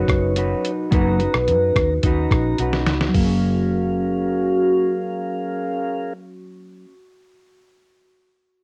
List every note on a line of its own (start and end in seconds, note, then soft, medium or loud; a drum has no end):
0.00 0.91 F#3 medium
0.00 0.71 C#4 medium
0.00 0.35 D#4 medium
0.00 0.71 D#4 medium
0.00 0.37 F#4 medium
0.00 0.71 F#4 medium
0.00 0.37 B4 medium
0.00 0.65 B4 loud
0.00 0.72 C#5 medium
0.08 0.53 F#1 medium
0.08 kick medium
0.08 cross-stick medium
0.08 closed hi-hat soft
0.36 0.91 D#4 medium
0.36 0.93 F#4 medium
0.36 0.92 B4 medium
0.36 closed hi-hat medium
0.65 closed hi-hat medium
0.90 1.26 F#1 loud
0.90 1.19 F#3 medium
0.90 1.20 A#3 medium
0.90 1.36 C#4 medium
0.90 1.37 D#4 medium
0.90 1.20 D#4 medium
0.90 1.37 F#4 medium
0.90 1.20 F#4 medium
0.90 2.55 B4 loud
0.90 1.17 B4 medium
0.90 1.38 A#5 medium
0.90 kick loud
0.90 closed hi-hat medium
1.19 2.05 F#4 soft
1.19 2.03 B4 soft
1.19 closed hi-hat soft
1.23 2.03 D#4 soft
1.34 1.50 B1 medium
1.34 cross-stick medium
1.47 1.70 F#2 medium
1.47 1.93 C#4 medium
1.47 1.54 D4 soft
1.47 1.93 F#4 medium
1.47 1.94 A#5 medium
1.47 closed hi-hat medium
1.54 1.96 D#4 medium
1.76 1.98 D#2 medium
1.76 kick medium
1.76 cross-stick medium
1.76 closed hi-hat soft
2.02 2.26 D#2 medium
2.02 2.94 C#4 medium
2.02 2.94 D#4 medium
2.02 2.58 D#4 medium
2.02 2.94 F#4 medium
2.02 2.60 F#4 medium
2.02 2.95 A#5 medium
2.02 kick medium
2.02 closed hi-hat medium
2.07 2.61 B4 medium
2.31 2.53 A#1 medium
2.31 kick medium
2.31 cross-stick medium
2.31 closed hi-hat soft
2.58 2.87 B1 medium
2.58 3.15 D#4 medium
2.58 6.10 F#4 medium
2.58 3.16 B4 medium
2.58 closed hi-hat medium
2.73 snare soft
2.86 3.09 C#2 medium
2.86 snare medium
2.86 closed hi-hat soft
3.01 snare medium
3.09 6.85 F#3 medium
3.14 6.83 F#1 medium
3.14 6.89 A#3 medium
3.14 6.13 C#4 medium
3.14 6.14 F#4 medium
3.14 6.13 G#4 medium
3.14 6.13 A#4 medium
3.14 6.13 F5 medium
3.14 kick medium
3.14 open hi-hat medium
3.24 6.92 C#4 medium